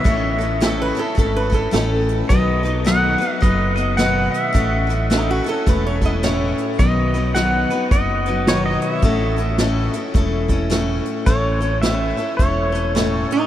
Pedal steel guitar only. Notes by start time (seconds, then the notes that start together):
Already playing: E5
2.29 D#5
2.87 F#5
3.42 D#5
3.76 D#5
3.97 F#5
4.32 E5
6.79 D#5
7.35 F#5
7.92 D#5
8.48 C#5
8.66 D#5
8.82 E5
11.26 C#5
11.82 E5
12.37 C#5